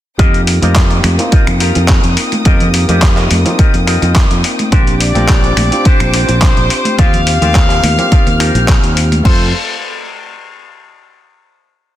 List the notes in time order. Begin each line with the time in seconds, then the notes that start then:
0.18 F2 A#3 C4 D#4 F4 G4 A#4 D#5 G5 D#6, kick, closed hi-hat
0.34 closed hi-hat
0.47 open hi-hat
0.62 F2 A#3 C4 D#4 F4 G4 A#4 D#5, closed hi-hat, high conga
0.76 kick, clap, closed hi-hat, high bongo
0.91 closed hi-hat
1.04 F2, finger snap, open hi-hat, high conga
1.18 A#3 C4 D#4 F4, closed hi-hat, high bongo
1.32 F4 G4 A#4 D#5, muted fingered electric bass stroke, kick, closed hi-hat
1.47 F2, finger snap, closed hi-hat
1.60 F4 G4 A#4 F5, open hi-hat
1.75 F2, closed hi-hat, high bongo
1.88 kick, clap, closed hi-hat
2.04 F2, closed hi-hat
2.17 open hi-hat
2.32 closed hi-hat, high conga
2.45 F2 A#3 C4 D#4 F4 G4 A#4 D#5, kick, closed hi-hat
2.60 closed hi-hat, low conga
2.74 open hi-hat
2.88 F2 A#3 C4 D#4 F4 G4 A#4 D#5, closed hi-hat, high conga, low conga
3.02 kick, clap, closed hi-hat, high bongo
3.17 clap, closed hi-hat
3.31 F2, open hi-hat, high conga
3.45 A#3 C4 D#4 F4, closed hi-hat, high bongo, low conga
3.58 F4 G4 A#4 D#5, kick, closed hi-hat
3.74 F2, closed hi-hat
3.87 F4 G4 A#4 D#5, finger snap, open hi-hat
4.02 F2, closed hi-hat, high bongo
4.16 kick, clap, closed hi-hat
4.30 F2, closed hi-hat
4.44 open hi-hat
4.59 closed hi-hat, high conga
4.72 A#1 C4 D4 F4 G4 A#4 C5 D6, kick, closed hi-hat
4.87 closed hi-hat
5.01 D5, open hi-hat
5.15 A#1 C4 D4 F4 G4 A#4 C5, closed hi-hat, high conga
5.29 kick, clap, closed hi-hat, high bongo
5.44 closed hi-hat
5.57 A#1, finger snap, open hi-hat, high conga
5.71 C4 D4 F4 G4, closed hi-hat, high bongo
5.85 D4 G4 A#4 C5, muted fingered electric bass stroke, kick, closed hi-hat
6.00 A#1, finger snap, closed hi-hat
6.13 D4 G4 A#4 C5, open hi-hat
6.28 A#1, closed hi-hat, high bongo
6.42 C5, kick, clap, closed hi-hat
6.57 A#1, closed hi-hat
6.70 open hi-hat
6.85 closed hi-hat, high conga
6.98 D#2 A#3 C4 D#4 F4 G4 C5 F5 F6, kick, closed hi-hat
7.13 closed hi-hat, low conga
7.27 open hi-hat
7.41 D#2 A#3 C4 D#4 F4 G4 C5, closed hi-hat, high conga, low conga
7.55 kick, clap, closed hi-hat, high bongo
7.70 clap, closed hi-hat
7.83 D#2, open hi-hat, high conga
7.97 A#3 C4 F4 G4, closed hi-hat, high bongo, low conga
8.11 D#4 F4 G4 C5, kick, closed hi-hat
8.27 D#2, closed hi-hat
8.39 D#4 F4 G4 A#4, finger snap, open hi-hat
8.55 A#1, closed hi-hat, high bongo
8.68 kick, clap, closed hi-hat
8.83 D#2, closed hi-hat
8.97 open hi-hat
9.12 closed hi-hat, high conga
9.23 F2 A3 C4 F4 A4 C5 F5 C6, kick, crash